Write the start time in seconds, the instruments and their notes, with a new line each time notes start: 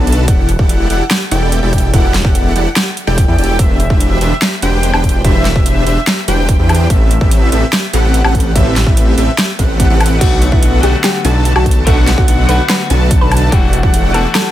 Already playing: detuned saw bass B1, supersaw synth D4 F#4 A4 B4 A5, digital synth lead A5
0.07 closed hi-hat
0.12 closed hi-hat
0.28 detuned saw bass E1, supersaw synth E4 G4 A4 D5 F#5, digital synth lead F#5, kick, closed hi-hat
0.49 closed hi-hat
0.59 detuned saw bass E1, supersaw synth E4 G4 A4 D5 F#5, digital synth lead F#5, kick
0.69 closed hi-hat
0.90 detuned saw bass E1, supersaw synth E4 G4 A4 D5 F#5, digital synth lead F#5, closed hi-hat
1.11 snare, closed hi-hat
1.31 detuned saw bass E1, supersaw synth E4 G4 A4 D5 G5, digital synth lead G5, closed hi-hat
1.52 closed hi-hat
1.63 detuned saw bass E1, supersaw synth E4 G4 A4 D5 G5, digital synth lead G5
1.73 kick, closed hi-hat
1.78 closed hi-hat
1.93 detuned saw bass E1, supersaw synth E4 G4 A4 D5 F#5, digital synth lead F#5, kick, closed hi-hat
2.14 snare, closed hi-hat
2.25 detuned saw bass E1, supersaw synth E4 G4 A4 D5 F#5, digital synth lead F#5, kick
2.35 closed hi-hat
2.56 detuned saw bass E1, supersaw synth E4 G4 A4 D5 F#5, digital synth lead F#5, closed hi-hat
2.76 snare, closed hi-hat
2.97 closed hi-hat
3.07 detuned saw bass E1, supersaw synth E4 G4 A4 D5 G5, digital synth lead G5
3.18 kick, closed hi-hat
3.28 detuned saw bass E2, supersaw synth E4 G4 A4 D5 G5, digital synth lead G5
3.38 detuned saw bass E1, supersaw synth E4 G4 A4 D5 G5, digital synth lead G5, closed hi-hat
3.44 closed hi-hat
3.59 detuned saw bass E1, supersaw synth B4 C5, digital synth lead E5, kick, closed hi-hat
3.80 closed hi-hat
3.90 detuned saw bass E1, supersaw synth D4 G4 B4 C5 E5, digital synth lead E5, kick
4.00 closed hi-hat
4.21 detuned saw bass E1, supersaw synth D4 G4 B4 C5 E5, digital synth lead E5, closed hi-hat
4.42 snare, closed hi-hat
4.62 detuned saw bass E1, supersaw synth D4 G4 B4 C5 G5, digital synth lead G5, closed hi-hat
4.83 closed hi-hat
4.94 detuned saw bass E1, supersaw synth D4 G4 B4 C5 G5, digital synth lead G5, high woodblock
5.04 kick, closed hi-hat
5.09 closed hi-hat
5.25 detuned saw bass E1, supersaw synth D4 G4 B4 C5 E5, digital synth lead E5, kick, closed hi-hat
5.45 snare, closed hi-hat
5.56 detuned saw bass E1, supersaw synth D4 G4 B4 C5 E5, digital synth lead E5, kick
5.66 closed hi-hat
5.87 detuned saw bass E1, supersaw synth D4 G4 B4 C5 E5, digital synth lead E5, closed hi-hat
6.07 snare, closed hi-hat
6.28 detuned saw bass E1, supersaw synth D4 G4 B4 C5 G5, digital synth lead G5, closed hi-hat
6.49 kick, closed hi-hat
6.59 detuned saw bass E2, supersaw synth D4 G4 B4 C5 G5, digital synth lead G5
6.69 closed hi-hat, high woodblock
6.75 closed hi-hat
6.90 detuned saw bass A1, supersaw synth C4 A4 B4 E5, digital synth lead E5, kick, closed hi-hat
7.11 closed hi-hat
7.21 detuned saw bass A1, supersaw synth C4 G4 A4 B4 E5, digital synth lead E5, kick
7.31 closed hi-hat
7.52 detuned saw bass A1, supersaw synth C4 G4 A4 B4 E5, digital synth lead E5, closed hi-hat
7.73 snare, closed hi-hat
7.93 detuned saw bass A1, supersaw synth C4 G4 A4 B4 F#5, digital synth lead F#5, closed hi-hat
8.14 closed hi-hat
8.25 detuned saw bass A1, supersaw synth C4 G4 A4 B4 F#5, digital synth lead F#5, high woodblock
8.35 kick, closed hi-hat
8.40 closed hi-hat
8.56 detuned saw bass A1, supersaw synth C4 G4 A4 B4 E5, digital synth lead E5, kick, closed hi-hat
8.76 snare, closed hi-hat
8.87 detuned saw bass A1, supersaw synth C4 G4 A4 B4 E5, digital synth lead E5, kick
8.97 closed hi-hat
9.18 detuned saw bass A1, supersaw synth C4 G4 A4 B4 E5, digital synth lead E5, closed hi-hat
9.38 snare, closed hi-hat
9.59 detuned saw bass A1, supersaw synth C4 G4 A4 B4 F#5, digital synth lead F#5, kick, closed hi-hat
9.80 kick, closed hi-hat
9.90 detuned saw bass A1, supersaw synth C4 G4 A4 B4 F#5, digital synth lead F#5
10.01 closed hi-hat, high woodblock
10.06 closed hi-hat
10.19 detuned saw bass B1, clean electric guitar D3 F#3 A3 B3, supersaw synth D4 F#4, synth pluck F#4 F#5, digital synth lead F#5, kick, closed hi-hat, crash
10.23 clean electric guitar F#4
10.42 closed hi-hat
10.52 detuned saw bass B1, supersaw synth D4 F#4 A4 B4 F#5, synth pluck E4 E5, digital synth lead F#5, kick
10.63 closed hi-hat
10.81 detuned saw bass B1, clean electric guitar D3 F#3 A3 B3, supersaw synth D4 F#4 A4 B4 F#5, synth pluck G4 G5, digital synth lead F#5, closed hi-hat
10.85 clean electric guitar F#4
11.04 synth pluck G4 G5, snare, closed hi-hat
11.25 detuned saw bass B1, supersaw synth D4 F#4 A4 B4 A5, digital synth lead A5, closed hi-hat
11.45 closed hi-hat
11.56 detuned saw bass B1, supersaw synth D4 F#4 A4 B4 A5, synth pluck F#4 F#5, digital synth lead A5, high woodblock
11.66 kick, closed hi-hat
11.71 closed hi-hat
11.85 detuned saw bass B1, clean electric guitar D3 F#3 A3 B3 F#4, supersaw synth D4 F#4 A4 B4 F#5, synth pluck A4 A5, digital synth lead F#5, kick, closed hi-hat
12.07 snare, closed hi-hat
12.18 detuned saw bass B1, supersaw synth D4 F#4 A4 B4 F#5, synth pluck F#4 F#5, digital synth lead F#5, kick
12.28 closed hi-hat
12.47 detuned saw bass B1, clean electric guitar D3 F#3 A3 B3, supersaw synth D4 F#4 A4 B4 F#5, synth pluck B4 B5, digital synth lead F#5, closed hi-hat
12.51 clean electric guitar F#4
12.69 synth pluck B4 B5, snare, closed hi-hat
12.90 detuned saw bass B1, supersaw synth D4 F#4 A4 B4 A5, digital synth lead A5, closed hi-hat
13.11 kick, closed hi-hat
13.21 detuned saw bass B1, supersaw synth D4 F#4 A4 B4 A5, synth pluck B4 B5, digital synth lead A5
13.32 closed hi-hat, high woodblock
13.37 closed hi-hat
13.50 detuned saw bass E1, clean electric guitar E3 G3 A3 D4 F#4, supersaw synth E4, synth pluck G4 G5, digital synth lead F#5, kick, closed hi-hat
13.73 closed hi-hat
13.83 detuned saw bass E1, supersaw synth E4 G4 A4 D5 F#5, synth pluck F#4 F#5, digital synth lead F#5, kick
13.94 closed hi-hat
14.12 detuned saw bass E1, clean electric guitar E3 G3 A3 D4, supersaw synth E4 G4 A4 D5 F#5, synth pluck A4 A5, digital synth lead F#5, closed hi-hat
14.16 clean electric guitar F#4
14.35 synth pluck A4 A5, snare, closed hi-hat